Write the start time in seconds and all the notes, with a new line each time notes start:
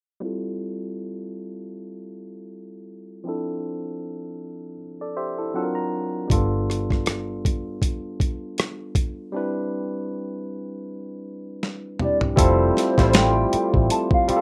0.20 G3 C4 E4 F4
0.25 A4
3.24 F3 C4 D4 E4
3.29 A4
5.01 A4 D5
5.17 G4 C5 E5
5.38 E4 A4
5.54 F#3 C4 D4 F4 A4 F#5
5.63 A#4
5.75 A#5
6.28 G1 G3 A3 D4, kick, closed hi-hat
6.32 B3 F4 A4
6.70 cross-stick, closed hi-hat
6.90 kick, cross-stick
7.06 cross-stick, closed hi-hat
7.45 kick, closed hi-hat
7.82 kick, closed hi-hat
8.20 kick, closed hi-hat
8.58 cross-stick, closed hi-hat
8.95 kick, closed hi-hat
9.32 G3 C4 D4 E4
9.36 B4
11.63 snare
11.99 G3 C4 D4 E4 G4, mid tom
12.04 D5
12.21 floor tom
12.36 F1 G3 A3 C4 E4 F4 A4, kick, closed hi-hat
12.41 C5
12.77 snare, closed hi-hat
12.97 A1 G3 C4 E4 F4 C5, kick, snare, closed hi-hat
13.13 G5, snare, closed hi-hat
13.53 muted fingered electric bass stroke, closed hi-hat
13.74 A1, kick
13.90 A5, closed hi-hat
14.11 F5, kick
14.28 G3 C4 F4 G4 F5, muted fingered electric bass stroke, closed hi-hat
14.37 A4